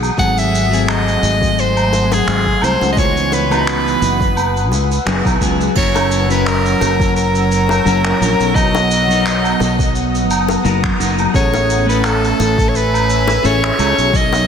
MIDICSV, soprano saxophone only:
0, 0, Header, 1, 2, 480
1, 0, Start_track
1, 0, Tempo, 697674
1, 125, Time_signature, 4, 2, 24, 8
1, 9955, End_track
2, 0, Start_track
2, 0, Title_t, "Soprano saxophone"
2, 0, Program_c, 0, 64
2, 131, Note_on_c, 0, 78, 98
2, 266, Note_on_c, 0, 76, 111
2, 276, Note_off_c, 0, 78, 0
2, 575, Note_off_c, 0, 76, 0
2, 575, Note_on_c, 0, 76, 71
2, 616, Note_on_c, 0, 75, 105
2, 626, Note_off_c, 0, 76, 0
2, 1101, Note_on_c, 0, 72, 96
2, 1111, Note_off_c, 0, 75, 0
2, 1467, Note_on_c, 0, 68, 88
2, 1477, Note_off_c, 0, 72, 0
2, 1816, Note_on_c, 0, 72, 89
2, 1827, Note_off_c, 0, 68, 0
2, 2007, Note_off_c, 0, 72, 0
2, 2013, Note_on_c, 0, 75, 70
2, 2054, Note_on_c, 0, 73, 91
2, 2065, Note_off_c, 0, 75, 0
2, 2296, Note_on_c, 0, 71, 92
2, 2306, Note_off_c, 0, 73, 0
2, 3250, Note_off_c, 0, 71, 0
2, 3974, Note_on_c, 0, 73, 80
2, 4315, Note_off_c, 0, 73, 0
2, 4345, Note_on_c, 0, 71, 78
2, 4451, Note_on_c, 0, 70, 92
2, 4461, Note_off_c, 0, 71, 0
2, 4925, Note_off_c, 0, 70, 0
2, 4929, Note_on_c, 0, 70, 92
2, 5884, Note_on_c, 0, 75, 103
2, 5895, Note_off_c, 0, 70, 0
2, 6845, Note_off_c, 0, 75, 0
2, 7813, Note_on_c, 0, 73, 94
2, 8154, Note_off_c, 0, 73, 0
2, 8181, Note_on_c, 0, 71, 79
2, 8296, Note_on_c, 0, 69, 91
2, 8306, Note_off_c, 0, 71, 0
2, 8730, Note_on_c, 0, 73, 65
2, 8740, Note_off_c, 0, 69, 0
2, 8779, Note_on_c, 0, 71, 94
2, 8790, Note_off_c, 0, 73, 0
2, 9262, Note_on_c, 0, 73, 98
2, 9272, Note_off_c, 0, 71, 0
2, 9743, Note_on_c, 0, 75, 103
2, 9753, Note_off_c, 0, 73, 0
2, 9955, Note_off_c, 0, 75, 0
2, 9955, End_track
0, 0, End_of_file